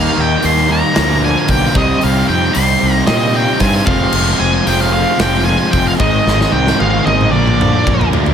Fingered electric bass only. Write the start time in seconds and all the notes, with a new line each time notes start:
0.17 D#2
0.44 D#2
0.97 D2
1.49 B1
1.75 C2
2.04 C2
2.29 F2
2.56 C2
2.82 C2
3.08 A#2
3.60 G2
3.87 F1
4.13 F1
4.40 F1
4.67 F1
5.20 F1
5.73 F1
6.00 G#1
6.26 G#1
6.52 C2
6.80 G#1
7.06 G#1
7.32 A#1
7.86 A#1
8.11 D2